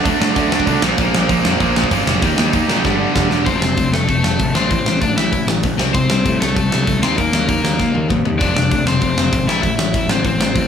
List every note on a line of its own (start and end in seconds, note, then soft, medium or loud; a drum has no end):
0.04 0.15 D2 medium
0.04 0.20 D3 loud
0.04 0.19 A3 loud
0.04 0.19 D4 loud
0.04 kick loud
0.04 open hi-hat medium
0.20 0.31 A2 loud
0.20 0.34 D3 medium
0.20 0.34 A3 medium
0.20 0.35 D4 medium
0.20 snare loud
0.35 0.56 D2 medium
0.35 0.50 D3 medium
0.35 0.50 A3 loud
0.35 0.49 D4 loud
0.35 kick loud
0.35 open hi-hat medium
0.51 0.65 D3 medium
0.51 0.66 A3 medium
0.51 0.66 D4 medium
0.51 snare loud
0.60 kick medium
0.66 0.77 C2 medium
0.66 0.81 D3 loud
0.66 0.82 A3 loud
0.66 0.82 D4 loud
0.66 kick loud
0.66 open hi-hat medium
0.82 0.93 A#1 medium
0.82 0.98 A#2 medium
0.82 0.98 F3 medium
0.82 0.98 A#3 medium
0.82 snare loud
0.98 1.08 A#1 medium
0.98 1.13 A#2 medium
0.98 1.14 F3 medium
0.98 1.14 A#3 loud
0.98 kick loud
0.98 open hi-hat medium
1.14 1.24 A#1 medium
1.14 1.30 A#2 medium
1.14 1.29 F3 medium
1.14 1.28 A#3 medium
1.14 snare loud
1.29 1.39 A#1 medium
1.29 1.44 A#2 medium
1.29 1.44 F3 loud
1.29 1.45 A#3 loud
1.29 kick loud
1.29 open hi-hat medium
1.45 1.55 F2 medium
1.45 1.61 A#2 medium
1.45 1.60 F3 loud
1.45 1.59 A#3 medium
1.45 snare loud
1.60 1.80 A#1 medium
1.60 1.75 A#2 medium
1.60 1.76 F3 medium
1.60 1.76 A#3 loud
1.60 kick loud
1.60 open hi-hat medium
1.76 1.91 A#2 medium
1.76 1.91 F3 medium
1.76 1.90 A#3 medium
1.76 snare loud
1.84 kick medium
1.91 2.01 G1 loud
1.91 2.05 A#2 medium
1.91 2.06 F3 loud
1.91 2.06 A#3 loud
1.91 kick loud
1.91 open hi-hat medium
2.07 2.17 F1 medium
2.07 2.21 A#2 medium
2.07 2.21 F3 medium
2.07 2.21 A#3 medium
2.07 snare loud
2.22 2.32 D#2 loud
2.22 2.36 D#3 medium
2.22 2.36 A#3 medium
2.22 2.36 D#4 loud
2.22 kick loud
2.22 open hi-hat medium
2.37 2.48 D#2 medium
2.37 2.51 D#3 medium
2.37 2.51 A#3 medium
2.37 2.52 D#4 medium
2.37 snare loud
2.52 2.63 D#2 medium
2.52 2.67 D#3 loud
2.52 2.67 A#3 loud
2.52 2.67 D#4 loud
2.52 kick loud
2.52 open hi-hat medium
2.68 2.78 A#2 medium
2.68 2.83 D#3 medium
2.68 2.83 A#3 medium
2.68 2.83 D#4 medium
2.68 snare loud
2.83 3.04 G1 medium
2.83 2.99 G2 medium
2.83 2.98 D3 loud
2.83 2.98 G3 loud
2.83 kick medium
2.83 snare medium
2.99 3.12 G2 medium
2.99 3.14 D3 medium
2.99 3.14 G3 loud
3.14 3.25 F1 medium
3.14 3.30 G2 medium
3.14 3.29 D3 loud
3.14 3.29 G3 loud
3.14 kick loud
3.14 snare loud
3.30 3.46 E1 medium
3.30 3.45 G2 medium
3.30 3.45 D3 medium
3.30 3.45 G3 medium
3.30 snare medium
3.45 3.60 F1 loud
3.45 3.60 F2 medium
3.45 3.60 C3 medium
3.45 3.61 F3 loud
3.45 3.90 C4 medium
3.45 3.93 C5 medium
3.45 kick loud
3.45 open hi-hat soft
3.61 3.76 F1 medium
3.61 3.75 F2 medium
3.61 3.75 C3 medium
3.61 snare loud
3.77 3.91 D2 medium
3.77 3.90 F2 medium
3.77 3.91 C3 medium
3.77 kick loud
3.77 open hi-hat medium
3.91 4.07 F1 medium
3.91 4.06 F2 medium
3.91 4.06 C3 medium
3.91 4.07 A3 medium
3.91 4.08 A4 medium
3.91 snare medium
4.08 4.23 F1 medium
4.08 4.21 F2 medium
4.08 4.21 C3 medium
4.08 4.51 A3 medium
4.08 4.56 A4 medium
4.08 kick loud
4.08 open hi-hat medium
4.22 4.39 F1 medium
4.22 4.37 F2 medium
4.22 4.37 C3 medium
4.22 snare loud
4.38 4.54 G#1 medium
4.38 4.52 F2 medium
4.38 4.52 C3 medium
4.38 kick loud
4.38 open hi-hat medium
4.54 4.70 A1 medium
4.54 4.69 A2 medium
4.54 4.69 E3 medium
4.54 4.69 A3 medium
4.54 4.69 C4 medium
4.54 4.70 C5 medium
4.54 snare loud
4.70 4.85 A1 medium
4.70 4.84 A2 medium
4.70 4.84 E3 medium
4.70 5.00 C4 medium
4.70 5.00 C5 medium
4.70 kick loud
4.70 open hi-hat medium
4.86 5.01 A1 medium
4.86 5.00 A2 medium
4.86 5.00 E3 medium
4.86 snare loud
5.01 5.16 A1 medium
5.01 5.15 A2 medium
5.01 5.16 E3 medium
5.01 5.16 D4 medium
5.01 5.16 D5 medium
5.01 kick loud
5.01 open hi-hat medium
5.17 5.32 A1 medium
5.17 5.31 A2 medium
5.17 5.31 E3 medium
5.17 5.46 E4 medium
5.17 5.46 E5 medium
5.17 snare loud
5.32 5.47 A1 medium
5.32 5.46 A2 medium
5.32 5.46 E3 medium
5.32 kick loud
5.32 open hi-hat medium
5.47 5.62 A1 medium
5.47 5.61 A2 medium
5.47 5.61 E3 medium
5.47 snare loud
5.63 5.78 A1 medium
5.63 5.77 A2 medium
5.63 5.77 E3 medium
5.63 kick loud
5.63 open hi-hat medium
5.78 5.94 C2 medium
5.78 5.92 C3 medium
5.78 5.93 G3 medium
5.78 5.93 C4 medium
5.78 snare loud
5.94 6.09 C2 loud
5.94 6.08 C3 medium
5.94 6.08 G3 medium
5.94 6.38 C4 medium
5.94 6.40 C5 loud
5.94 kick loud
5.94 open hi-hat soft
6.09 6.25 C2 medium
6.09 6.23 C3 medium
6.09 6.23 G3 medium
6.09 snare loud
6.25 6.40 A2 medium
6.25 6.39 C3 medium
6.25 6.39 G3 medium
6.25 kick loud
6.25 open hi-hat medium
6.40 6.56 C2 medium
6.40 6.54 C3 medium
6.40 6.54 G3 medium
6.40 6.55 A3 medium
6.40 6.55 A4 medium
6.40 snare loud
6.56 6.71 C2 medium
6.56 6.70 C3 medium
6.56 6.70 G3 medium
6.56 6.99 A3 medium
6.56 7.02 A4 medium
6.56 kick loud
6.56 open hi-hat medium
6.71 6.86 C2 medium
6.71 6.85 C3 medium
6.71 6.85 G3 medium
6.71 snare loud
6.86 7.02 C2 medium
6.86 7.00 C3 medium
6.86 7.01 G3 medium
6.86 kick loud
6.86 open hi-hat medium
7.02 7.17 D#2 medium
7.02 7.16 D#3 medium
7.02 7.17 A#3 medium
7.02 7.16 C4 medium
7.02 7.17 D#4 medium
7.02 7.17 C5 loud
7.02 snare loud
7.17 7.33 D#2 loud
7.17 7.31 D#3 medium
7.17 7.46 A#3 medium
7.17 7.31 A#3 medium
7.17 7.47 A#4 medium
7.17 kick loud
7.17 open hi-hat medium
7.33 7.48 D#2 medium
7.33 7.47 D#3 medium
7.33 7.47 A#3 medium
7.33 snare loud
7.48 7.62 D#2 medium
7.48 7.62 D#3 medium
7.48 8.06 A#3 medium
7.48 7.62 A#3 medium
7.48 8.06 A#4 medium
7.48 kick loud
7.48 open hi-hat medium
7.63 7.78 D#2 medium
7.63 7.77 D#3 medium
7.63 7.78 A#3 medium
7.63 snare loud
7.78 7.94 D#2 medium
7.78 7.93 D#3 medium
7.78 7.93 A#3 medium
7.78 kick loud
7.78 snare medium
7.94 8.09 D#2 medium
7.94 8.07 D#3 medium
7.94 8.08 A#3 medium
7.94 high tom medium
8.08 8.25 D#2 medium
8.08 8.23 D#3 medium
8.08 8.23 A#3 medium
8.08 kick loud
8.08 mid tom medium
8.25 8.40 D#2 medium
8.25 8.39 D#3 medium
8.25 8.39 A#3 medium
8.25 floor tom medium
8.39 8.55 F1 medium
8.39 8.54 F2 medium
8.39 8.54 C3 medium
8.39 8.55 F3 medium
8.39 8.82 D4 medium
8.39 8.87 D5 medium
8.39 kick loud
8.39 open hi-hat medium
8.55 8.70 F1 medium
8.55 8.70 F2 medium
8.55 8.70 C3 medium
8.55 snare loud
8.71 8.85 D2 medium
8.71 8.85 F2 medium
8.71 8.85 C3 medium
8.71 kick loud
8.71 open hi-hat medium
8.86 9.01 F1 medium
8.86 9.00 F2 medium
8.86 9.00 C3 medium
8.86 9.02 C4 medium
8.86 9.01 C5 medium
8.86 snare loud
9.01 9.16 F1 medium
9.01 9.16 F2 medium
9.01 9.16 C3 medium
9.01 9.45 C4 medium
9.01 9.45 C5 medium
9.01 kick loud
9.01 open hi-hat medium
9.17 9.32 F1 medium
9.17 9.30 F2 medium
9.17 9.30 C3 medium
9.17 snare loud
9.31 9.47 G#1 medium
9.31 9.46 F2 medium
9.31 9.46 C3 medium
9.31 kick loud
9.31 open hi-hat medium
9.47 9.63 A1 medium
9.47 9.62 A2 medium
9.47 9.62 E3 medium
9.47 9.62 A3 medium
9.47 9.62 E4 medium
9.47 9.61 E5 medium
9.47 snare loud
9.62 9.78 A1 medium
9.62 9.76 A2 medium
9.62 9.77 E3 medium
9.62 10.06 E4 medium
9.62 10.10 E5 loud
9.62 kick loud
9.62 open hi-hat medium
9.77 9.93 A1 medium
9.77 9.92 A2 medium
9.77 9.92 E3 medium
9.77 snare loud
9.94 10.07 A1 medium
9.94 10.08 A2 medium
9.94 10.08 E3 medium
9.94 kick loud
9.94 open hi-hat medium
10.08 10.23 A1 medium
10.08 10.23 A2 medium
10.08 10.23 E3 medium
10.08 10.24 C4 medium
10.08 10.25 C5 medium
10.08 snare loud
10.24 10.38 A1 medium
10.24 10.38 A2 medium
10.24 10.38 E3 medium
10.24 10.68 C4 medium
10.24 10.68 C5 medium
10.24 kick loud
10.24 open hi-hat medium
10.38 10.54 A1 medium
10.38 10.53 A2 medium
10.38 10.54 E3 medium
10.38 snare loud
10.55 10.68 A1 medium
10.55 10.68 A2 medium
10.55 10.68 E3 medium
10.55 kick loud
10.55 open hi-hat medium